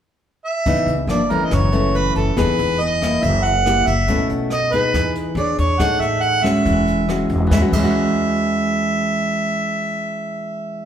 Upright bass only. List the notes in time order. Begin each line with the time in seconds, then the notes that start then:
0.66 C#2
0.86 C#2
1.07 G1
1.51 F#1
2.16 F#1
2.37 E1
2.59 E1
3.23 F#1
3.87 F#1
4.08 B1
4.30 B1
4.94 E2
5.35 E2
5.58 E2
5.79 A1
5.99 A1
6.65 E1
7.30 E1
7.51 E2
7.72 E2